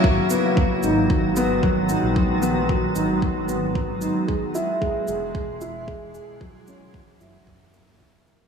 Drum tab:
SH |-x-x-x-x|-x-x-x-x|-x-x-x-x|-x-x-x-x|
BD |o-o-o-o-|o-o-o-o-|o-o-o-o-|o-o-o-o-|